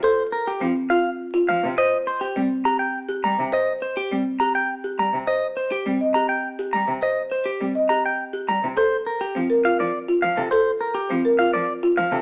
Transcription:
<<
  \new Staff \with { instrumentName = "Clean electric guitar" } { \time 3/4 \key bes \major \tempo 4 = 103 c''16 r16 bes'16 g'16 r8 f''16 r8. f''16 r16 | ees''16 r16 c''16 g'16 r8 bes''16 g''16 r8 bes''16 r16 | ees''16 r16 c''16 g'16 r8 bes''16 g''16 r8 bes''16 r16 | ees''16 r16 c''16 g'16 r8 bes''16 g''16 r8 bes''16 r16 |
ees''16 r16 c''16 g'16 r8 bes''16 g''16 r8 bes''16 r16 | c''16 r16 bes'16 g'16 r8 f''16 d''16 r8 f''16 a'16 | c''16 r16 bes'16 g'16 r8 f''16 d''16 r8 f''16 a'16 | }
  \new Staff \with { instrumentName = "Marimba" } { \time 3/4 \key bes \major a'16 r8. c'16 r16 f'16 r8 f'16 r8 | c''16 r8. c'16 r16 g'16 r8 g'16 r8 | c''16 r8. c'16 r16 g'16 r8 g'16 r8 | c''16 r8. c'16 ees''16 g'16 r8 g'16 r8 |
c''16 r8. c'16 ees''16 g'16 r8 g'16 r8 | a'16 r8. c'16 bes'16 f'16 r8 f'16 r8 | a'16 r8. c'16 bes'16 f'16 r8 f'16 r8 | }
  \new Staff \with { instrumentName = "Cello" } { \clef bass \time 3/4 \key bes \major r4 f16 r4 r16 f16 c16 | r4 g16 r4 r16 g16 c16 | r4 g16 r4 r16 g16 c16 | r4 g16 r4 r16 g16 c16 |
r4 g16 r4 r16 g16 c16 | r4 f16 r8 f16 r8 f16 c16 | r4 f16 r8 f16 r8 f16 c16 | }
>>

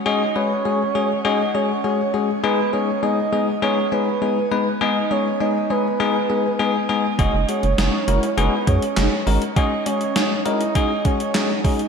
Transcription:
<<
  \new Staff \with { instrumentName = "Soft synth lead" } { \time 4/4 \key fis \mixolydian \tempo 4 = 101 dis''8 cis''4. dis''8 cis''4 r8 | b'8 cis''8 dis''8 dis''8 cis''8 b'4 r8 | dis''8 cis''8 dis''8 b'2 r8 | dis''8 cis''4. b'8 cis''4 r8 |
dis''8 cis''4 dis''4 cis''4 r8 | }
  \new Staff \with { instrumentName = "Synth pluck" } { \time 4/4 \key fis \mixolydian r1 | r1 | r1 | cis'8 cis'8 dis'8 e'8 dis'8 cis'8 dis'8 dis'8 |
cis'8 cis'8 dis'8 e'8 dis'8 cis'8 dis'8 dis'8 | }
  \new Staff \with { instrumentName = "Tine electric piano" } { \time 4/4 \key fis \mixolydian <gis cis' fis' gis'>16 r16 <gis cis' fis' b'>16 r16 <gis cis' fis' gis'>16 r16 <gis cis' fis' gis'>16 r16 <gis cis' fis' gis'>16 r16 <gis cis' fis' gis'>16 r16 <gis cis' fis' gis'>16 r16 <gis cis' fis' gis'>16 r16 | <gis b dis' gis'>16 r16 <gis b dis' gis'>16 r16 <gis b dis' gis'>16 r16 <gis b dis' gis'>16 r16 <gis b dis' gis'>16 r16 <gis b dis' gis'>16 r16 <gis b dis' gis'>16 r16 <gis b dis' b'>16 r16 | <gis b dis' gis'>16 r16 <gis b dis' gis'>16 r16 <gis b dis' gis'>16 r16 <gis b dis' gis'>16 r16 <gis b dis' gis'>16 r16 <gis b dis' gis'>16 r16 <gis b dis' gis'>16 r16 <gis b dis' gis'>16 r16 | <gis cis' fis' gis'>16 r16 <gis cis' fis' gis'>16 r16 <gis cis' fis' gis'>16 r16 <gis cis' fis' ais'>16 r16 <gis cis' fis' gis'>16 r16 <gis cis' fis' gis'>16 r16 <gis cis' fis' gis'>16 r16 <gis cis' fis' ais'>16 r16 |
<gis cis' fis' gis'>16 r16 <gis cis' fis' gis'>16 r16 <gis cis' fis' gis'>16 r16 <gis cis' fis' ais'>16 r16 <gis cis' fis' gis'>16 r16 <gis cis' fis' gis'>16 r16 <gis cis' fis' gis'>16 r16 <gis cis' fis' gis'>16 r16 | }
  \new Staff \with { instrumentName = "Analog synth bass" } { \clef bass \time 4/4 \key fis \mixolydian r1 | r1 | r1 | fis,,16 fis,,16 r16 fis,,16 fis,,16 r16 fis,,16 r16 fis,,16 r16 fis,16 r16 fis,,16 r16 gis,,16 r16 |
r1 | }
  \new DrumStaff \with { instrumentName = "Drums" } \drummode { \time 4/4 r4 r4 r4 r4 | r4 r4 r4 r4 | r4 r4 r4 r4 | <hh bd>8 hh16 hh16 <hh sn>8 hh16 hh16 hh8 <hh bd>16 hh16 <hc hh sn>8 hho16 hh16 |
<hh bd>8 hh16 hh16 <hh sn>8 hh16 hh16 <hh bd>8 <hh bd>16 hh16 <hc hh sn>8 <hho bd>16 hh16 | }
>>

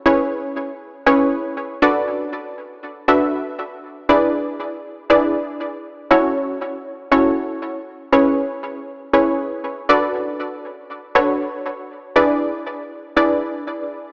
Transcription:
\new Staff \with { instrumentName = "Synth stab" } { \time 4/4 \key b \dorian \tempo 4 = 119 <cis' e' gis' b' cis''>4. r8 <cis' e' gis' b' cis''>4. <d' fis' a' b' d''>8~ | <d' fis' a' b' d''>4 r4 <d' fis' a' b' e''>4. r8 | <d' e' gis' b' d''>4. r8 <d' e' gis' b' d''>4. r8 | <cis' e' fis' a' cis''>4. r8 <cis' e' fis' a' cis''>4. r8 |
<cis' e' gis' b' cis''>4. r8 <cis' e' gis' b' cis''>4. <d' fis' a' b' d''>8~ | <d' fis' a' b' d''>4 r4 <d' fis' a' b' cis''>4. r8 | <d' e' gis' b' d''>4. r8 <d' e' gis' b' d''>4. r8 | }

